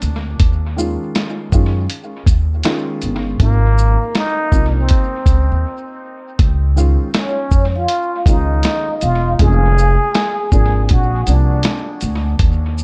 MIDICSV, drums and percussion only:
0, 0, Header, 1, 2, 480
1, 0, Start_track
1, 0, Key_signature, -5, "minor"
1, 0, Tempo, 750000
1, 253, Time_signature, 4, 2, 24, 8
1, 8216, End_track
2, 0, Start_track
2, 0, Title_t, "Drums"
2, 11, Note_on_c, 9, 42, 47
2, 11, Note_on_c, 9, 82, 44
2, 75, Note_off_c, 9, 42, 0
2, 75, Note_off_c, 9, 82, 0
2, 253, Note_on_c, 9, 42, 84
2, 254, Note_on_c, 9, 36, 92
2, 317, Note_off_c, 9, 42, 0
2, 318, Note_off_c, 9, 36, 0
2, 502, Note_on_c, 9, 82, 58
2, 566, Note_off_c, 9, 82, 0
2, 736, Note_on_c, 9, 42, 57
2, 740, Note_on_c, 9, 38, 90
2, 800, Note_off_c, 9, 42, 0
2, 804, Note_off_c, 9, 38, 0
2, 975, Note_on_c, 9, 36, 88
2, 976, Note_on_c, 9, 82, 53
2, 1039, Note_off_c, 9, 36, 0
2, 1040, Note_off_c, 9, 82, 0
2, 1213, Note_on_c, 9, 42, 94
2, 1277, Note_off_c, 9, 42, 0
2, 1449, Note_on_c, 9, 36, 93
2, 1454, Note_on_c, 9, 42, 57
2, 1454, Note_on_c, 9, 82, 58
2, 1513, Note_off_c, 9, 36, 0
2, 1518, Note_off_c, 9, 42, 0
2, 1518, Note_off_c, 9, 82, 0
2, 1686, Note_on_c, 9, 42, 105
2, 1698, Note_on_c, 9, 38, 120
2, 1750, Note_off_c, 9, 42, 0
2, 1762, Note_off_c, 9, 38, 0
2, 1930, Note_on_c, 9, 42, 44
2, 1930, Note_on_c, 9, 82, 48
2, 1994, Note_off_c, 9, 42, 0
2, 1994, Note_off_c, 9, 82, 0
2, 2174, Note_on_c, 9, 36, 97
2, 2174, Note_on_c, 9, 42, 90
2, 2238, Note_off_c, 9, 36, 0
2, 2238, Note_off_c, 9, 42, 0
2, 2420, Note_on_c, 9, 82, 61
2, 2484, Note_off_c, 9, 82, 0
2, 2654, Note_on_c, 9, 42, 53
2, 2658, Note_on_c, 9, 38, 100
2, 2718, Note_off_c, 9, 42, 0
2, 2722, Note_off_c, 9, 38, 0
2, 2892, Note_on_c, 9, 36, 90
2, 2895, Note_on_c, 9, 82, 46
2, 2956, Note_off_c, 9, 36, 0
2, 2959, Note_off_c, 9, 82, 0
2, 3127, Note_on_c, 9, 42, 108
2, 3141, Note_on_c, 9, 36, 91
2, 3191, Note_off_c, 9, 42, 0
2, 3205, Note_off_c, 9, 36, 0
2, 3365, Note_on_c, 9, 36, 101
2, 3370, Note_on_c, 9, 42, 55
2, 3370, Note_on_c, 9, 82, 58
2, 3429, Note_off_c, 9, 36, 0
2, 3434, Note_off_c, 9, 42, 0
2, 3434, Note_off_c, 9, 82, 0
2, 4090, Note_on_c, 9, 42, 78
2, 4091, Note_on_c, 9, 36, 94
2, 4154, Note_off_c, 9, 42, 0
2, 4155, Note_off_c, 9, 36, 0
2, 4335, Note_on_c, 9, 82, 60
2, 4399, Note_off_c, 9, 82, 0
2, 4569, Note_on_c, 9, 42, 65
2, 4573, Note_on_c, 9, 38, 104
2, 4633, Note_off_c, 9, 42, 0
2, 4637, Note_off_c, 9, 38, 0
2, 4808, Note_on_c, 9, 82, 52
2, 4809, Note_on_c, 9, 36, 90
2, 4872, Note_off_c, 9, 82, 0
2, 4873, Note_off_c, 9, 36, 0
2, 5046, Note_on_c, 9, 42, 102
2, 5110, Note_off_c, 9, 42, 0
2, 5285, Note_on_c, 9, 36, 93
2, 5291, Note_on_c, 9, 42, 54
2, 5291, Note_on_c, 9, 82, 51
2, 5349, Note_off_c, 9, 36, 0
2, 5355, Note_off_c, 9, 42, 0
2, 5355, Note_off_c, 9, 82, 0
2, 5523, Note_on_c, 9, 42, 96
2, 5535, Note_on_c, 9, 38, 112
2, 5587, Note_off_c, 9, 42, 0
2, 5599, Note_off_c, 9, 38, 0
2, 5768, Note_on_c, 9, 42, 50
2, 5768, Note_on_c, 9, 82, 53
2, 5832, Note_off_c, 9, 42, 0
2, 5832, Note_off_c, 9, 82, 0
2, 6012, Note_on_c, 9, 36, 87
2, 6012, Note_on_c, 9, 42, 92
2, 6076, Note_off_c, 9, 36, 0
2, 6076, Note_off_c, 9, 42, 0
2, 6261, Note_on_c, 9, 82, 60
2, 6325, Note_off_c, 9, 82, 0
2, 6493, Note_on_c, 9, 42, 54
2, 6497, Note_on_c, 9, 38, 105
2, 6557, Note_off_c, 9, 42, 0
2, 6561, Note_off_c, 9, 38, 0
2, 6732, Note_on_c, 9, 36, 92
2, 6733, Note_on_c, 9, 82, 52
2, 6796, Note_off_c, 9, 36, 0
2, 6797, Note_off_c, 9, 82, 0
2, 6969, Note_on_c, 9, 42, 90
2, 6982, Note_on_c, 9, 36, 88
2, 7033, Note_off_c, 9, 42, 0
2, 7046, Note_off_c, 9, 36, 0
2, 7211, Note_on_c, 9, 42, 57
2, 7211, Note_on_c, 9, 82, 56
2, 7275, Note_off_c, 9, 42, 0
2, 7275, Note_off_c, 9, 82, 0
2, 7443, Note_on_c, 9, 42, 98
2, 7455, Note_on_c, 9, 38, 127
2, 7507, Note_off_c, 9, 42, 0
2, 7519, Note_off_c, 9, 38, 0
2, 7685, Note_on_c, 9, 42, 45
2, 7685, Note_on_c, 9, 82, 51
2, 7749, Note_off_c, 9, 42, 0
2, 7749, Note_off_c, 9, 82, 0
2, 7931, Note_on_c, 9, 42, 82
2, 7932, Note_on_c, 9, 36, 92
2, 7995, Note_off_c, 9, 42, 0
2, 7996, Note_off_c, 9, 36, 0
2, 8180, Note_on_c, 9, 82, 60
2, 8216, Note_off_c, 9, 82, 0
2, 8216, End_track
0, 0, End_of_file